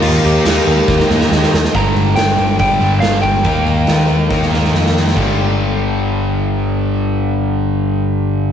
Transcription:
<<
  \new Staff \with { instrumentName = "Lead electric guitar" } { \time 4/4 \key g \minor \tempo 4 = 140 f'8 g'2 r4. | bes''4 g''4 g''4 f''8 g''8~ | g''2. r4 | r1 |
r1 | }
  \new Staff \with { instrumentName = "Tonewheel organ" } { \time 4/4 \key g \minor <g' ees'' bes''>1 | r1 | r1 | r1 |
r1 | }
  \new Staff \with { instrumentName = "Overdriven electric guitar" } { \clef bass \time 4/4 \key g \minor <ees bes ees'>4 <ees bes ees'>2~ <ees bes ees'>8 r8 | <g, d g>2 <g, d g>2 | <ees bes ees'>2 <ees bes ees'>2 | <g, d g>1~ |
<g, d g>1 | }
  \new Staff \with { instrumentName = "Overdriven electric guitar" } { \clef bass \time 4/4 \key g \minor <ees bes ees'>4 <ees bes ees'>4. <ees bes ees'>4 r8 | <g, d g>2~ <g, d g>8 <g, d g>8 <g, d g>4 | <ees bes ees'>2~ <ees bes ees'>8 <ees bes ees'>8 <ees bes ees'>4 | <g, d g>1~ |
<g, d g>1 | }
  \new Staff \with { instrumentName = "Picked electric bass" } { \clef bass \time 4/4 \key g \minor ees,8 ees,8 ees,8 ees,8 ees,8 ees,8 ees,8 ees,8 | g,,8 g,,8 g,,8 g,,8 g,,8 g,,8 g,,4 | ees,8 ees,8 ees,8 ees,8 ees,8 ees,8 f,4 | g,,1~ |
g,,1 | }
  \new DrumStaff \with { instrumentName = "Drums" } \drummode { \time 4/4 cymc8 cymc8 <cymc sn>8 cymc8 <bd sn>16 sn16 sn16 sn16 sn16 sn16 sn16 sn16 | <hho bd>8 hho8 <hho sn>8 hho8 <hho bd>8 hho8 <hho sn>8 <hho bd>8 | <hho bd>8 hho8 <hho sn>8 hho8 <bd sn>16 sn16 sn16 sn16 sn16 sn16 sn16 sn16 | <cymc bd>4 r4 r4 r4 |
r4 r4 r4 r4 | }
>>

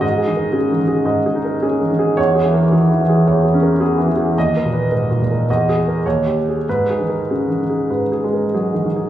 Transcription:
<<
  \new Staff \with { instrumentName = "Grand piano" } { \time 4/4 \key gis \minor \tempo 4 = 109 << { dis''8 r2. r8 | cis''8 r2. r8 | dis''8 r4. dis''8 r8 cis''8 r8 | b'8 r2. r8 | } \\ { \tuplet 3/2 { r8 gis'8 ais'8 gis'8 dis8 gis'8 dis''8 gis'8 ais'8 gis'8 dis8 gis'8 } | \tuplet 3/2 { r8 gis'8 ais'8 gis'8 e8 gis'8 cis''8 gis'8 ais'8 gis'8 e8 gis'8 } | \tuplet 3/2 { r8 ais'8 b'8 ais'8 ais,8 ais'8 r8 gis'8 ais'8 r8 g'8 gis'8 } | \tuplet 3/2 { r8 gis'8 ais'8 gis'8 dis8 gis'8 b'8 gis'8 ais'8 gis'8 dis8 gis'8 } | } >> }
  \new Staff \with { instrumentName = "Grand piano" } { \clef bass \time 4/4 \key gis \minor gis,8 dis8 cis8 dis8 gis,8 dis'8 cis'8 dis8 | e,8 e8 dis8 e8 e,8 cis'8 b8 e8 | dis,8 ais,8 gis,8 ais,8 e,4 dis,4 | gis,8 dis8 cis8 dis8 gis,8 gis8 fis8 dis8 | }
>>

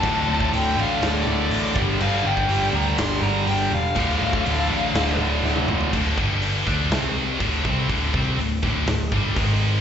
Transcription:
<<
  \new Staff \with { instrumentName = "Lead electric guitar" } { \time 4/4 \key d \minor \tempo 4 = 122 a''4 g''8 f''8 d''8 d''4 r8 | f''8 g''4 bes''8 c'''8 bes''8 g''8 f''8~ | f''2~ f''8 r4. | r1 |
r1 | }
  \new Staff \with { instrumentName = "Distorted electric guitar" } { \clef bass \time 4/4 \key d \minor <d, a, d>2.~ <d, a, d>8 <g, d g>8~ | <g, d g>2.~ <g, d g>8 r8 | <d, a, d>1 | <d, a, d>8 <g, d g>4 <d a d'>8 <c g c'>4 <d, a, d>8 <c g c'>8 |
<d, a, d>8 <c g c'>8 <d, a,>8 <d, a, d>8 <d, a,>8 <g, d g>8 <gis, dis gis>4 | }
  \new Staff \with { instrumentName = "Distorted electric guitar" } { \clef bass \time 4/4 \key d \minor <d, a, d>4. <d, a, d>2 <g, d g>8~ | <g, d g>4 <g, d g>2~ <g, d g>8 r8 | <d, a, d>4. <d, a, d>2~ <d, a, d>8 | <d, a, d>8 <g, d g>4 <d a d'>8 <c g c'>4 <d, a, d>8 <c g c'>8 |
<d, a, d>8 <c g c'>8 <d, a,>8 <d, a, d>8 <d, a,>8 <g, d g>8 <gis, dis gis>4 | }
  \new Staff \with { instrumentName = "Overdriven electric guitar" } { \clef bass \time 4/4 \key d \minor <d, a, d>8 <d, a, d>8 <d, a, d>8 <d, a, d>8 <d, a, d>8 <d, a, d>8 <d, a, d>8 <g, d g>8 | <g, d g>8 <g, d g>8 <g, d g>8 <g, d g>8 <g, d g>8 <g, d g>8 <g, d g>8 <g, d g>8 | <d, a, d>8 <d, a, d>8 <d, a, d>8 <d, a, d>8 <d, a, d>8 <d, a, d>8 <d, a, d>8 <d, a, d>8 | r1 |
r1 | }
  \new Staff \with { instrumentName = "Picked electric bass" } { \clef bass \time 4/4 \key d \minor d,,8 d,,8 d,,8 a,,8 d,,8 d,,8 a,,8 g,,8 | g,,8 g,,8 g,,8 d,8 g,,8 g,,8 g,,8 e,,8 | d,,8 d,,8 d,,8 a,,8 d,,8 d,,8 d,,8 d,,8 | d,,8 g,,4 d,8 c,4 d,,8 c,8 |
d,,8 c,8 d,,8 d,,8 d,,8 g,,8 gis,,4 | }
  \new DrumStaff \with { instrumentName = "Drums" } \drummode { \time 4/4 <hho bd>8. bd16 hho4 <hho sn>4 hho8 bd8 | cymc16 sn8 bd16 hho4 <hho sn>4 hho4 | <hho bd>16 sn8 bd16 hho4 <hho sn>4 sn16 tommh16 toml16 tomfh16 | <cymc bd>8 bd8 hho8 <bd sn>8 <hho sn>4 <hho bd>8 bd8 |
<hho bd>8 bd8 hho8 <bd sn>8 <hho sn>8 bd8 <hho bd>4 | }
>>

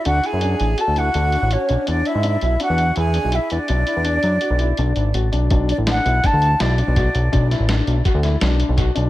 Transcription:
<<
  \new Staff \with { instrumentName = "Flute" } { \time 5/4 \key b \dorian \tempo 4 = 165 fis''8 gis''4. a''8 fis''4. cis''4 | d''8 e''4. fis''4 gis''4 e''8 d''8~ | d''1 r4 | r8 d''8 fis''4 a''4 d''2~ |
d''8 r1 r8 | }
  \new Staff \with { instrumentName = "Alto saxophone" } { \time 5/4 \key b \dorian fis'8 gis'4. a'8 fis'4. cis'4 | d'8 e'4. fis'4 gis'4 e'8 d'8~ | d'1 r4 | r1 r4 |
r1 r4 | }
  \new Staff \with { instrumentName = "Grand piano" } { \time 5/4 \key b \dorian d'8 e'8 d'4 fis'8 e'8 d'4 fis'8 d'8 | d'4 d'8 e'8 d'4 e'8 d'8 e'4 | d'8 e'8 d'4 fis'8 e'8 d'4 fis'8 d'8 | d'4 d'8 e'8 d'4 e'8 d'8 fis'4 |
d'8 e'8 d'4 fis'8 e'8 d'4 fis'8 d'8 | }
  \new Staff \with { instrumentName = "Analog synth bass" } { \clef bass \time 5/4 \key b \dorian d,8 r16 fis,8. a,,8 r16 d,8. d,8. a,,8 r16 b,,16 r16 | e,8 r16 gis,8. b,,8 r16 e,8. e,8. b,,8 r16 e,16 r16 | b,,8 r16 e,8. fis,8 r16 b,,8. b,,8 gis,,8 a,,8 b,,8 | b,,8. a,,8. b,,8 r16 d,8. b,,8. b,,8. b,,8 |
b,,8. a,,8. b,,8 r16 d,8. b,,8. b,,8. b,,8 | }
  \new DrumStaff \with { instrumentName = "Drums" } \drummode { \time 5/4 hh8 hh8 hh8 hh8 hh8 hh8 hh8 hh8 hh8 hh8 | hh8 hh8 hh8 hh8 hh8 hh8 hh8 hh8 hh8 hh8 | hh8 hh8 hh8 hh8 hh8 hh8 hh8 hh8 hh8 hh8 | <hh bd>8 hh8 <hh sn>8 hh8 <hh bd sn>8 hh8 <hh sn>8 hh8 <hh bd>8 hh8 |
<hh bd>8 <hh sn>8 <hh sn>8 hh8 <hh bd>8 <hh sn>8 <hh sn>8 hh8 <hh bd>8 hh8 | }
>>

